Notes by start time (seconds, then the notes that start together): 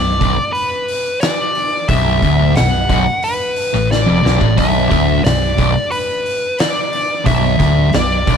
Already playing: B0 B1 D5
0.20 B0 B1, kick, open hi-hat
0.53 B4, open hi-hat
0.88 open hi-hat
1.21 D5, snare, open hi-hat
1.55 open hi-hat
1.88 B0 B1 E5, kick, open hi-hat
2.22 D1 D2, kick, open hi-hat
2.55 B0 B1 F#5, snare, open hi-hat
2.89 B0 B1, kick, open hi-hat
3.23 B4, open hi-hat
3.56 open hi-hat
3.73 A1 A2
3.91 D5, snare
4.06 F1 F2
4.23 B0 B1, snare
4.40 A1 A2, kick
4.57 B0 B1 E5, kick, open hi-hat
4.90 D1 D2, kick, open hi-hat
5.24 B0 B1 D5, snare, open hi-hat
5.57 B0 B1, kick, open hi-hat
5.91 B4, open hi-hat
6.26 open hi-hat
6.59 D5, snare, open hi-hat
6.93 open hi-hat
7.25 B0 B1 E5, kick, open hi-hat
7.58 D1 D2, kick, open hi-hat
7.92 B0 B1 D5, snare, open hi-hat
8.27 B0 B1, kick, open hi-hat